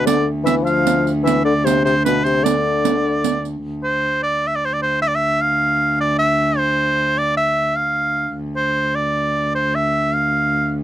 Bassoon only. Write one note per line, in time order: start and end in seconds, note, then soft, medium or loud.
0.07 0.27 D3 medium
0.44 0.65 E3 medium
0.63 1.10 F3 medium
1.23 1.43 E3 medium
1.45 1.54 D3 medium
1.64 1.83 C3 medium
1.85 1.94 C3 medium
2.07 2.24 B2 medium
2.25 2.46 C3 medium
2.44 3.44 D3 medium